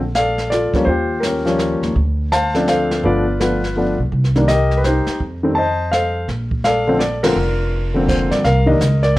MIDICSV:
0, 0, Header, 1, 5, 480
1, 0, Start_track
1, 0, Key_signature, -2, "major"
1, 0, Tempo, 360794
1, 1157, Time_signature, 3, 2, 24, 8
1, 12225, End_track
2, 0, Start_track
2, 0, Title_t, "Grand piano"
2, 0, Program_c, 0, 0
2, 204, Note_on_c, 0, 77, 82
2, 228, Note_on_c, 0, 74, 55
2, 238, Note_on_c, 0, 69, 55
2, 648, Note_off_c, 0, 74, 0
2, 667, Note_on_c, 0, 74, 75
2, 692, Note_off_c, 0, 69, 0
2, 695, Note_off_c, 0, 77, 0
2, 712, Note_on_c, 0, 69, 48
2, 716, Note_on_c, 0, 65, 56
2, 991, Note_on_c, 0, 53, 56
2, 995, Note_on_c, 0, 55, 50
2, 1004, Note_on_c, 0, 58, 56
2, 1005, Note_on_c, 0, 61, 67
2, 1131, Note_on_c, 0, 72, 80
2, 1143, Note_off_c, 0, 69, 0
2, 1144, Note_off_c, 0, 53, 0
2, 1145, Note_off_c, 0, 65, 0
2, 1147, Note_off_c, 0, 55, 0
2, 1151, Note_off_c, 0, 58, 0
2, 1151, Note_off_c, 0, 61, 0
2, 1167, Note_off_c, 0, 74, 0
2, 1184, Note_on_c, 0, 65, 52
2, 1185, Note_on_c, 0, 67, 52
2, 1602, Note_on_c, 0, 70, 59
2, 1634, Note_off_c, 0, 67, 0
2, 1640, Note_off_c, 0, 72, 0
2, 1643, Note_on_c, 0, 61, 46
2, 1654, Note_on_c, 0, 67, 44
2, 1903, Note_off_c, 0, 65, 0
2, 1935, Note_on_c, 0, 53, 63
2, 1939, Note_off_c, 0, 61, 0
2, 1943, Note_on_c, 0, 55, 48
2, 1952, Note_on_c, 0, 58, 49
2, 1958, Note_on_c, 0, 61, 59
2, 2351, Note_off_c, 0, 70, 0
2, 2378, Note_off_c, 0, 67, 0
2, 2560, Note_off_c, 0, 53, 0
2, 2564, Note_off_c, 0, 55, 0
2, 2569, Note_off_c, 0, 58, 0
2, 2572, Note_off_c, 0, 61, 0
2, 3085, Note_on_c, 0, 81, 97
2, 3100, Note_on_c, 0, 72, 61
2, 3101, Note_on_c, 0, 77, 64
2, 3384, Note_on_c, 0, 53, 57
2, 3395, Note_on_c, 0, 57, 53
2, 3400, Note_on_c, 0, 60, 54
2, 3408, Note_on_c, 0, 62, 71
2, 3555, Note_off_c, 0, 72, 0
2, 3560, Note_off_c, 0, 77, 0
2, 3575, Note_on_c, 0, 72, 58
2, 3577, Note_off_c, 0, 81, 0
2, 3580, Note_on_c, 0, 77, 69
2, 3588, Note_on_c, 0, 69, 55
2, 4005, Note_off_c, 0, 53, 0
2, 4010, Note_off_c, 0, 57, 0
2, 4012, Note_off_c, 0, 60, 0
2, 4014, Note_off_c, 0, 72, 0
2, 4016, Note_off_c, 0, 62, 0
2, 4021, Note_off_c, 0, 69, 0
2, 4036, Note_on_c, 0, 53, 61
2, 4050, Note_on_c, 0, 57, 54
2, 4053, Note_on_c, 0, 59, 52
2, 4063, Note_off_c, 0, 77, 0
2, 4063, Note_on_c, 0, 65, 57
2, 4063, Note_on_c, 0, 71, 56
2, 4065, Note_on_c, 0, 62, 61
2, 4065, Note_on_c, 0, 74, 78
2, 4312, Note_off_c, 0, 53, 0
2, 4318, Note_off_c, 0, 57, 0
2, 4320, Note_off_c, 0, 59, 0
2, 4326, Note_off_c, 0, 62, 0
2, 4521, Note_off_c, 0, 71, 0
2, 4523, Note_on_c, 0, 53, 39
2, 4527, Note_on_c, 0, 57, 42
2, 4533, Note_off_c, 0, 65, 0
2, 4534, Note_on_c, 0, 59, 45
2, 4539, Note_on_c, 0, 62, 45
2, 4541, Note_on_c, 0, 71, 65
2, 4546, Note_off_c, 0, 74, 0
2, 4553, Note_on_c, 0, 65, 47
2, 4795, Note_off_c, 0, 53, 0
2, 4797, Note_off_c, 0, 57, 0
2, 4800, Note_off_c, 0, 59, 0
2, 4803, Note_off_c, 0, 62, 0
2, 5002, Note_on_c, 0, 53, 45
2, 5017, Note_on_c, 0, 57, 47
2, 5018, Note_on_c, 0, 59, 47
2, 5031, Note_on_c, 0, 62, 56
2, 5261, Note_off_c, 0, 71, 0
2, 5267, Note_off_c, 0, 65, 0
2, 5274, Note_off_c, 0, 53, 0
2, 5282, Note_off_c, 0, 57, 0
2, 5282, Note_off_c, 0, 59, 0
2, 5289, Note_off_c, 0, 62, 0
2, 5798, Note_on_c, 0, 51, 52
2, 5808, Note_on_c, 0, 55, 50
2, 5814, Note_on_c, 0, 58, 51
2, 5821, Note_on_c, 0, 62, 53
2, 5948, Note_off_c, 0, 51, 0
2, 5954, Note_off_c, 0, 55, 0
2, 5956, Note_off_c, 0, 58, 0
2, 5960, Note_off_c, 0, 62, 0
2, 5961, Note_on_c, 0, 75, 90
2, 5980, Note_on_c, 0, 67, 63
2, 5985, Note_on_c, 0, 70, 57
2, 6353, Note_on_c, 0, 71, 61
2, 6384, Note_off_c, 0, 75, 0
2, 6430, Note_off_c, 0, 71, 0
2, 6445, Note_on_c, 0, 72, 63
2, 6454, Note_off_c, 0, 67, 0
2, 6474, Note_on_c, 0, 67, 46
2, 6479, Note_on_c, 0, 63, 51
2, 6702, Note_off_c, 0, 70, 0
2, 6888, Note_off_c, 0, 72, 0
2, 6904, Note_off_c, 0, 67, 0
2, 6906, Note_off_c, 0, 63, 0
2, 7228, Note_on_c, 0, 51, 58
2, 7231, Note_on_c, 0, 55, 47
2, 7240, Note_on_c, 0, 57, 48
2, 7244, Note_on_c, 0, 60, 63
2, 7383, Note_off_c, 0, 51, 0
2, 7383, Note_on_c, 0, 81, 94
2, 7384, Note_off_c, 0, 55, 0
2, 7389, Note_off_c, 0, 57, 0
2, 7391, Note_off_c, 0, 60, 0
2, 7419, Note_on_c, 0, 72, 65
2, 7424, Note_on_c, 0, 75, 61
2, 7869, Note_on_c, 0, 77, 74
2, 7879, Note_off_c, 0, 72, 0
2, 7884, Note_off_c, 0, 81, 0
2, 7894, Note_on_c, 0, 69, 49
2, 7899, Note_on_c, 0, 72, 52
2, 8141, Note_off_c, 0, 75, 0
2, 8319, Note_off_c, 0, 77, 0
2, 8332, Note_off_c, 0, 69, 0
2, 8335, Note_off_c, 0, 72, 0
2, 8834, Note_on_c, 0, 77, 83
2, 8857, Note_on_c, 0, 69, 66
2, 8862, Note_on_c, 0, 74, 59
2, 9141, Note_on_c, 0, 50, 61
2, 9154, Note_on_c, 0, 53, 50
2, 9160, Note_on_c, 0, 57, 54
2, 9162, Note_on_c, 0, 60, 67
2, 9280, Note_off_c, 0, 74, 0
2, 9299, Note_off_c, 0, 50, 0
2, 9300, Note_on_c, 0, 74, 72
2, 9305, Note_off_c, 0, 53, 0
2, 9308, Note_off_c, 0, 57, 0
2, 9309, Note_off_c, 0, 60, 0
2, 9329, Note_off_c, 0, 77, 0
2, 9577, Note_off_c, 0, 69, 0
2, 9590, Note_off_c, 0, 74, 0
2, 9619, Note_on_c, 0, 70, 85
2, 9625, Note_on_c, 0, 53, 60
2, 9628, Note_on_c, 0, 50, 66
2, 9639, Note_on_c, 0, 57, 54
2, 9642, Note_on_c, 0, 60, 71
2, 9644, Note_on_c, 0, 65, 52
2, 9652, Note_on_c, 0, 62, 54
2, 9781, Note_off_c, 0, 53, 0
2, 9782, Note_off_c, 0, 50, 0
2, 9788, Note_off_c, 0, 57, 0
2, 9789, Note_off_c, 0, 60, 0
2, 10565, Note_on_c, 0, 50, 50
2, 10576, Note_on_c, 0, 53, 47
2, 10587, Note_on_c, 0, 58, 45
2, 10593, Note_on_c, 0, 60, 60
2, 10760, Note_on_c, 0, 72, 64
2, 11005, Note_off_c, 0, 70, 0
2, 11017, Note_off_c, 0, 65, 0
2, 11021, Note_off_c, 0, 62, 0
2, 11059, Note_on_c, 0, 74, 67
2, 11070, Note_off_c, 0, 72, 0
2, 11192, Note_off_c, 0, 50, 0
2, 11197, Note_off_c, 0, 53, 0
2, 11203, Note_off_c, 0, 58, 0
2, 11206, Note_off_c, 0, 60, 0
2, 11222, Note_off_c, 0, 74, 0
2, 11236, Note_on_c, 0, 77, 75
2, 11260, Note_on_c, 0, 70, 60
2, 11517, Note_off_c, 0, 77, 0
2, 11527, Note_on_c, 0, 51, 58
2, 11539, Note_on_c, 0, 75, 65
2, 11541, Note_on_c, 0, 55, 53
2, 11551, Note_on_c, 0, 58, 49
2, 11551, Note_on_c, 0, 62, 62
2, 11690, Note_off_c, 0, 51, 0
2, 11697, Note_off_c, 0, 55, 0
2, 11702, Note_off_c, 0, 58, 0
2, 11702, Note_off_c, 0, 62, 0
2, 11976, Note_off_c, 0, 70, 0
2, 12013, Note_on_c, 0, 74, 84
2, 12027, Note_on_c, 0, 70, 46
2, 12032, Note_off_c, 0, 75, 0
2, 12225, Note_off_c, 0, 70, 0
2, 12225, Note_off_c, 0, 74, 0
2, 12225, End_track
3, 0, Start_track
3, 0, Title_t, "Upright bass"
3, 0, Program_c, 1, 32
3, 0, Note_on_c, 1, 34, 64
3, 927, Note_off_c, 1, 34, 0
3, 1151, Note_on_c, 1, 39, 67
3, 2367, Note_off_c, 1, 39, 0
3, 2411, Note_on_c, 1, 39, 56
3, 2580, Note_off_c, 1, 39, 0
3, 2598, Note_on_c, 1, 38, 76
3, 3986, Note_off_c, 1, 38, 0
3, 4038, Note_on_c, 1, 31, 73
3, 5249, Note_off_c, 1, 31, 0
3, 5299, Note_on_c, 1, 35, 58
3, 5464, Note_off_c, 1, 35, 0
3, 5481, Note_on_c, 1, 36, 68
3, 6690, Note_off_c, 1, 36, 0
3, 6919, Note_on_c, 1, 41, 65
3, 8304, Note_off_c, 1, 41, 0
3, 8351, Note_on_c, 1, 34, 68
3, 9739, Note_off_c, 1, 34, 0
3, 9782, Note_on_c, 1, 29, 62
3, 10998, Note_off_c, 1, 29, 0
3, 11055, Note_on_c, 1, 43, 52
3, 11220, Note_off_c, 1, 43, 0
3, 11232, Note_on_c, 1, 36, 76
3, 11698, Note_off_c, 1, 36, 0
3, 11705, Note_on_c, 1, 37, 77
3, 12174, Note_off_c, 1, 37, 0
3, 12225, End_track
4, 0, Start_track
4, 0, Title_t, "Muted upright bass strokes"
4, 977, Note_on_c, 9, 29, 31
4, 1110, Note_off_c, 9, 29, 0
4, 6743, Note_on_c, 9, 29, 33
4, 6876, Note_off_c, 9, 29, 0
4, 12225, End_track
5, 0, Start_track
5, 0, Title_t, "Drums"
5, 198, Note_on_c, 9, 38, 46
5, 200, Note_on_c, 9, 44, 44
5, 331, Note_off_c, 9, 38, 0
5, 333, Note_off_c, 9, 44, 0
5, 508, Note_on_c, 9, 38, 29
5, 641, Note_off_c, 9, 38, 0
5, 689, Note_on_c, 9, 38, 42
5, 692, Note_on_c, 9, 44, 43
5, 822, Note_off_c, 9, 38, 0
5, 825, Note_off_c, 9, 44, 0
5, 981, Note_on_c, 9, 36, 53
5, 984, Note_on_c, 9, 38, 34
5, 1114, Note_off_c, 9, 36, 0
5, 1118, Note_off_c, 9, 38, 0
5, 1150, Note_on_c, 9, 25, 44
5, 1155, Note_on_c, 9, 36, 28
5, 1288, Note_off_c, 9, 36, 0
5, 1640, Note_on_c, 9, 38, 52
5, 1643, Note_on_c, 9, 44, 51
5, 1773, Note_off_c, 9, 38, 0
5, 1776, Note_off_c, 9, 44, 0
5, 1950, Note_on_c, 9, 38, 29
5, 2083, Note_off_c, 9, 38, 0
5, 2116, Note_on_c, 9, 38, 50
5, 2119, Note_on_c, 9, 44, 40
5, 2249, Note_off_c, 9, 38, 0
5, 2252, Note_off_c, 9, 44, 0
5, 2430, Note_on_c, 9, 38, 34
5, 2563, Note_off_c, 9, 38, 0
5, 2605, Note_on_c, 9, 36, 27
5, 2610, Note_off_c, 9, 25, 0
5, 2610, Note_on_c, 9, 25, 43
5, 2738, Note_off_c, 9, 36, 0
5, 3087, Note_on_c, 9, 38, 51
5, 3090, Note_on_c, 9, 44, 54
5, 3220, Note_off_c, 9, 38, 0
5, 3223, Note_off_c, 9, 44, 0
5, 3389, Note_on_c, 9, 38, 33
5, 3522, Note_off_c, 9, 38, 0
5, 3563, Note_on_c, 9, 38, 48
5, 3566, Note_on_c, 9, 44, 42
5, 3697, Note_off_c, 9, 38, 0
5, 3699, Note_off_c, 9, 44, 0
5, 3876, Note_on_c, 9, 38, 42
5, 4009, Note_off_c, 9, 38, 0
5, 4047, Note_on_c, 9, 36, 28
5, 4052, Note_off_c, 9, 25, 0
5, 4052, Note_on_c, 9, 25, 37
5, 4181, Note_off_c, 9, 36, 0
5, 4531, Note_on_c, 9, 38, 50
5, 4534, Note_on_c, 9, 44, 49
5, 4664, Note_off_c, 9, 38, 0
5, 4667, Note_off_c, 9, 44, 0
5, 4840, Note_on_c, 9, 38, 32
5, 4973, Note_off_c, 9, 38, 0
5, 5484, Note_on_c, 9, 36, 31
5, 5486, Note_off_c, 9, 25, 0
5, 5486, Note_on_c, 9, 25, 44
5, 5617, Note_off_c, 9, 36, 0
5, 5643, Note_on_c, 9, 38, 24
5, 5776, Note_off_c, 9, 38, 0
5, 5796, Note_on_c, 9, 38, 35
5, 5929, Note_off_c, 9, 38, 0
5, 5964, Note_on_c, 9, 38, 53
5, 5967, Note_on_c, 9, 44, 51
5, 6097, Note_off_c, 9, 38, 0
5, 6100, Note_off_c, 9, 44, 0
5, 6269, Note_on_c, 9, 38, 29
5, 6402, Note_off_c, 9, 38, 0
5, 6443, Note_on_c, 9, 38, 44
5, 6445, Note_on_c, 9, 44, 46
5, 6576, Note_off_c, 9, 38, 0
5, 6578, Note_off_c, 9, 44, 0
5, 6741, Note_on_c, 9, 38, 32
5, 6874, Note_off_c, 9, 38, 0
5, 6923, Note_on_c, 9, 36, 28
5, 6930, Note_off_c, 9, 25, 0
5, 6930, Note_on_c, 9, 25, 37
5, 7056, Note_off_c, 9, 36, 0
5, 7883, Note_on_c, 9, 38, 48
5, 7886, Note_on_c, 9, 44, 45
5, 8016, Note_off_c, 9, 38, 0
5, 8019, Note_off_c, 9, 44, 0
5, 8360, Note_off_c, 9, 25, 0
5, 8360, Note_on_c, 9, 25, 41
5, 8360, Note_on_c, 9, 36, 28
5, 8360, Note_on_c, 9, 38, 33
5, 8493, Note_off_c, 9, 36, 0
5, 8493, Note_off_c, 9, 38, 0
5, 8662, Note_on_c, 9, 36, 41
5, 8795, Note_off_c, 9, 36, 0
5, 8832, Note_on_c, 9, 38, 44
5, 8834, Note_on_c, 9, 44, 46
5, 8965, Note_off_c, 9, 38, 0
5, 8967, Note_off_c, 9, 44, 0
5, 9314, Note_on_c, 9, 38, 48
5, 9317, Note_on_c, 9, 44, 51
5, 9447, Note_off_c, 9, 38, 0
5, 9450, Note_off_c, 9, 44, 0
5, 9627, Note_on_c, 9, 38, 75
5, 9629, Note_on_c, 9, 51, 62
5, 9760, Note_off_c, 9, 38, 0
5, 9762, Note_off_c, 9, 51, 0
5, 9797, Note_off_c, 9, 25, 0
5, 9797, Note_on_c, 9, 25, 44
5, 10755, Note_on_c, 9, 36, 55
5, 10756, Note_on_c, 9, 38, 47
5, 10756, Note_on_c, 9, 49, 53
5, 10759, Note_on_c, 9, 44, 42
5, 10888, Note_off_c, 9, 36, 0
5, 10889, Note_off_c, 9, 38, 0
5, 10889, Note_off_c, 9, 49, 0
5, 10892, Note_off_c, 9, 44, 0
5, 11062, Note_on_c, 9, 38, 36
5, 11195, Note_off_c, 9, 38, 0
5, 11235, Note_on_c, 9, 36, 17
5, 11236, Note_off_c, 9, 25, 0
5, 11236, Note_on_c, 9, 25, 43
5, 11236, Note_on_c, 9, 38, 40
5, 11368, Note_off_c, 9, 36, 0
5, 11369, Note_off_c, 9, 38, 0
5, 11712, Note_on_c, 9, 36, 18
5, 11719, Note_on_c, 9, 38, 54
5, 11722, Note_on_c, 9, 44, 61
5, 11845, Note_off_c, 9, 36, 0
5, 11852, Note_off_c, 9, 38, 0
5, 11855, Note_off_c, 9, 44, 0
5, 12016, Note_on_c, 9, 38, 33
5, 12149, Note_off_c, 9, 38, 0
5, 12225, Note_off_c, 9, 25, 0
5, 12225, End_track
0, 0, End_of_file